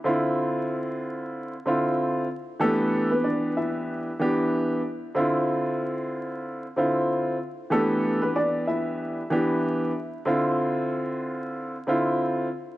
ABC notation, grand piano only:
X:1
M:4/4
L:1/8
Q:"Swing 16ths" 1/4=94
K:Ddor
V:1 name="Grand piano"
[D,CEF]4- [D,CEF] [D,CEF]2 z | [E,B,DG]4- [E,B,DG] [E,B,DG]2 z | [D,CEF]4- [D,CEF] [D,CEF]2 z | [E,B,DG]4- [E,B,DG] [E,B,DG]2 z |
[D,CEF]4- [D,CEF] [D,CEF]2 z |]